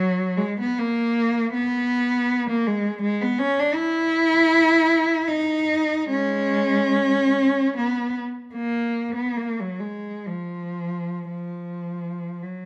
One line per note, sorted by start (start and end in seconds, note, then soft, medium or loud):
0.00 0.36 F#3 medium
0.37 0.56 G#3 medium
0.60 0.77 B3 medium
0.79 1.52 A#3 medium
1.52 2.44 B3 medium
2.50 2.66 A#3 medium
2.67 3.01 G#3 medium
3.02 3.19 G#3 medium
3.22 3.39 B3 medium
3.39 3.57 C#4 medium
3.59 3.76 D4 medium
3.75 5.26 E4 loud
5.28 6.10 D#4 medium
6.09 7.34 G#3 medium
6.09 7.74 C#4 medium
7.78 8.16 B3 medium
8.54 9.10 A#3 medium
9.16 9.36 B3 medium
9.37 9.58 A#3 medium
9.61 9.82 F#3 medium
9.80 10.27 G#3 medium
10.27 11.30 F3 medium
11.31 12.42 F3 soft
12.43 12.65 F#3 soft